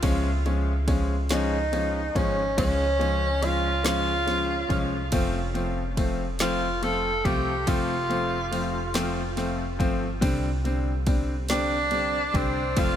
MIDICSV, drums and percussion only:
0, 0, Header, 1, 2, 480
1, 0, Start_track
1, 0, Tempo, 849858
1, 14, Time_signature, 6, 3, 24, 8
1, 7322, End_track
2, 0, Start_track
2, 0, Title_t, "Drums"
2, 14, Note_on_c, 9, 51, 81
2, 17, Note_on_c, 9, 36, 107
2, 71, Note_off_c, 9, 51, 0
2, 73, Note_off_c, 9, 36, 0
2, 259, Note_on_c, 9, 51, 40
2, 315, Note_off_c, 9, 51, 0
2, 495, Note_on_c, 9, 36, 95
2, 495, Note_on_c, 9, 51, 63
2, 552, Note_off_c, 9, 36, 0
2, 552, Note_off_c, 9, 51, 0
2, 731, Note_on_c, 9, 51, 66
2, 737, Note_on_c, 9, 38, 118
2, 787, Note_off_c, 9, 51, 0
2, 794, Note_off_c, 9, 38, 0
2, 976, Note_on_c, 9, 51, 48
2, 1033, Note_off_c, 9, 51, 0
2, 1217, Note_on_c, 9, 36, 78
2, 1219, Note_on_c, 9, 51, 53
2, 1274, Note_off_c, 9, 36, 0
2, 1276, Note_off_c, 9, 51, 0
2, 1457, Note_on_c, 9, 36, 108
2, 1457, Note_on_c, 9, 51, 80
2, 1513, Note_off_c, 9, 36, 0
2, 1514, Note_off_c, 9, 51, 0
2, 1701, Note_on_c, 9, 51, 45
2, 1757, Note_off_c, 9, 51, 0
2, 1935, Note_on_c, 9, 51, 62
2, 1991, Note_off_c, 9, 51, 0
2, 2172, Note_on_c, 9, 51, 71
2, 2178, Note_on_c, 9, 38, 118
2, 2228, Note_off_c, 9, 51, 0
2, 2235, Note_off_c, 9, 38, 0
2, 2415, Note_on_c, 9, 51, 46
2, 2420, Note_on_c, 9, 38, 34
2, 2471, Note_off_c, 9, 51, 0
2, 2477, Note_off_c, 9, 38, 0
2, 2655, Note_on_c, 9, 36, 83
2, 2656, Note_on_c, 9, 51, 50
2, 2711, Note_off_c, 9, 36, 0
2, 2712, Note_off_c, 9, 51, 0
2, 2891, Note_on_c, 9, 51, 79
2, 2894, Note_on_c, 9, 36, 97
2, 2947, Note_off_c, 9, 51, 0
2, 2951, Note_off_c, 9, 36, 0
2, 3135, Note_on_c, 9, 51, 43
2, 3192, Note_off_c, 9, 51, 0
2, 3373, Note_on_c, 9, 36, 91
2, 3374, Note_on_c, 9, 51, 60
2, 3430, Note_off_c, 9, 36, 0
2, 3431, Note_off_c, 9, 51, 0
2, 3609, Note_on_c, 9, 51, 73
2, 3616, Note_on_c, 9, 38, 112
2, 3666, Note_off_c, 9, 51, 0
2, 3672, Note_off_c, 9, 38, 0
2, 3856, Note_on_c, 9, 51, 47
2, 3912, Note_off_c, 9, 51, 0
2, 4095, Note_on_c, 9, 36, 79
2, 4097, Note_on_c, 9, 51, 54
2, 4152, Note_off_c, 9, 36, 0
2, 4154, Note_off_c, 9, 51, 0
2, 4333, Note_on_c, 9, 51, 75
2, 4335, Note_on_c, 9, 36, 107
2, 4389, Note_off_c, 9, 51, 0
2, 4391, Note_off_c, 9, 36, 0
2, 4578, Note_on_c, 9, 51, 44
2, 4635, Note_off_c, 9, 51, 0
2, 4815, Note_on_c, 9, 51, 60
2, 4872, Note_off_c, 9, 51, 0
2, 5050, Note_on_c, 9, 51, 68
2, 5057, Note_on_c, 9, 38, 116
2, 5107, Note_off_c, 9, 51, 0
2, 5113, Note_off_c, 9, 38, 0
2, 5293, Note_on_c, 9, 51, 49
2, 5298, Note_on_c, 9, 38, 35
2, 5349, Note_off_c, 9, 51, 0
2, 5355, Note_off_c, 9, 38, 0
2, 5534, Note_on_c, 9, 36, 79
2, 5538, Note_on_c, 9, 51, 53
2, 5590, Note_off_c, 9, 36, 0
2, 5594, Note_off_c, 9, 51, 0
2, 5773, Note_on_c, 9, 36, 108
2, 5773, Note_on_c, 9, 51, 74
2, 5830, Note_off_c, 9, 36, 0
2, 5830, Note_off_c, 9, 51, 0
2, 6016, Note_on_c, 9, 51, 44
2, 6073, Note_off_c, 9, 51, 0
2, 6250, Note_on_c, 9, 51, 61
2, 6251, Note_on_c, 9, 36, 96
2, 6306, Note_off_c, 9, 51, 0
2, 6308, Note_off_c, 9, 36, 0
2, 6487, Note_on_c, 9, 51, 71
2, 6494, Note_on_c, 9, 38, 115
2, 6543, Note_off_c, 9, 51, 0
2, 6550, Note_off_c, 9, 38, 0
2, 6726, Note_on_c, 9, 51, 45
2, 6782, Note_off_c, 9, 51, 0
2, 6972, Note_on_c, 9, 36, 85
2, 6974, Note_on_c, 9, 51, 55
2, 7028, Note_off_c, 9, 36, 0
2, 7030, Note_off_c, 9, 51, 0
2, 7210, Note_on_c, 9, 51, 74
2, 7212, Note_on_c, 9, 36, 110
2, 7267, Note_off_c, 9, 51, 0
2, 7268, Note_off_c, 9, 36, 0
2, 7322, End_track
0, 0, End_of_file